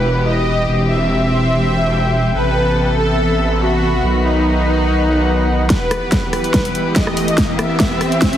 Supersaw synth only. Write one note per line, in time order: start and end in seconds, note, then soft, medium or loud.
0.00 0.17 B4 medium
0.25 0.80 D#5 medium
0.88 2.27 E5 loud
2.34 2.90 B4 loud
2.97 3.52 A4 medium
3.60 4.15 F#4 medium
4.23 5.62 D#4 loud
5.70 6.25 B4 loud
6.33 6.88 B4 medium
6.96 7.51 D#5 loud
7.59 8.37 E5 loud